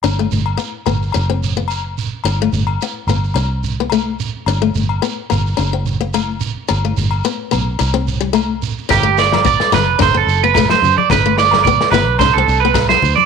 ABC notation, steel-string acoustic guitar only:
X:1
M:4/4
L:1/16
Q:"Swing 16ths" 1/4=109
K:G
V:1 name="Steel-string acoustic guitar"
D A,2 z B,2 B,2 D C2 B, z4 | D A,2 z B,2 B,2 D z2 B, A,2 z2 | D A,2 z B,2 B,2 D C2 B, A,2 z2 | D A,2 z B,2 B,2 D C2 G, A,2 z2 |
D A,2 z B,2 B,2 D C2 B, A,2 z2 | D A,2 z B,2 B,2 D C2 B, z4 |]